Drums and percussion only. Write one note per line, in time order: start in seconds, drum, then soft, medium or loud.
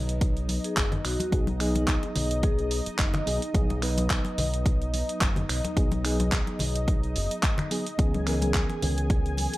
0.09 closed hi-hat medium
0.21 kick loud
0.21 closed hi-hat medium
0.37 closed hi-hat soft
0.49 open hi-hat loud
0.49 high conga medium
0.64 closed hi-hat medium
0.77 kick loud
0.77 clap loud
0.77 closed hi-hat medium
0.92 closed hi-hat soft
0.92 low conga medium
1.05 finger snap medium
1.05 open hi-hat medium
1.20 closed hi-hat soft
1.20 muted conga soft
1.20 high conga medium
1.32 kick loud
1.32 closed hi-hat medium
1.47 closed hi-hat soft
1.47 high conga loud
1.60 finger snap medium
1.60 open hi-hat loud
1.75 closed hi-hat medium
1.75 muted conga medium
1.75 high conga medium
1.88 kick loud
1.88 clap loud
1.88 closed hi-hat medium
2.03 closed hi-hat soft
2.03 muted conga medium
2.16 open hi-hat medium
2.16 low conga medium
2.31 closed hi-hat medium
2.43 kick loud
2.43 closed hi-hat soft
2.59 closed hi-hat soft
2.71 open hi-hat loud
2.86 closed hi-hat soft
2.99 kick loud
2.99 clap loud
2.99 closed hi-hat medium
3.14 finger snap medium
3.14 closed hi-hat soft
3.14 low conga medium
3.27 open hi-hat medium
3.42 closed hi-hat soft
3.54 kick loud
3.54 closed hi-hat soft
3.70 closed hi-hat soft
3.70 high conga medium
3.82 finger snap medium
3.82 open hi-hat loud
3.98 closed hi-hat medium
3.98 muted conga medium
3.98 high conga loud
4.10 kick loud
4.10 clap loud
4.10 closed hi-hat soft
4.25 closed hi-hat soft
4.25 muted conga medium
4.38 open hi-hat medium
4.38 low conga medium
4.54 closed hi-hat soft
4.66 kick loud
4.66 closed hi-hat soft
4.82 closed hi-hat soft
4.94 open hi-hat loud
4.94 high conga medium
5.09 closed hi-hat soft
5.21 kick loud
5.21 clap loud
5.21 closed hi-hat medium
5.36 closed hi-hat soft
5.36 low conga medium
5.49 finger snap medium
5.49 open hi-hat medium
5.64 closed hi-hat soft
5.64 muted conga soft
5.64 high conga medium
5.77 kick loud
5.77 closed hi-hat soft
5.92 closed hi-hat soft
5.92 high conga medium
6.05 finger snap medium
6.05 open hi-hat loud
6.20 closed hi-hat soft
6.20 muted conga soft
6.20 high conga loud
6.32 kick loud
6.32 clap loud
6.32 closed hi-hat soft
6.47 closed hi-hat soft
6.47 muted conga soft
6.59 open hi-hat medium
6.59 low conga medium
6.75 closed hi-hat medium
6.88 kick loud
6.88 closed hi-hat soft
7.03 closed hi-hat soft
7.16 open hi-hat loud
7.31 closed hi-hat soft
7.43 kick loud
7.43 clap loud
7.43 closed hi-hat medium
7.58 finger snap medium
7.58 closed hi-hat soft
7.58 low conga medium
7.71 open hi-hat medium
7.86 closed hi-hat soft
7.99 kick loud
7.99 closed hi-hat soft
8.14 closed hi-hat soft
8.14 high conga medium
8.27 finger snap medium
8.27 open hi-hat loud
8.42 closed hi-hat soft
8.42 muted conga soft
8.42 high conga medium
8.54 kick loud
8.54 clap loud
8.54 closed hi-hat soft
8.70 closed hi-hat soft
8.70 muted conga soft
8.82 open hi-hat medium
8.82 low conga medium
8.98 closed hi-hat soft
9.10 kick loud
9.10 closed hi-hat soft
9.26 closed hi-hat soft
9.37 open hi-hat loud
9.37 high conga medium
9.53 closed hi-hat soft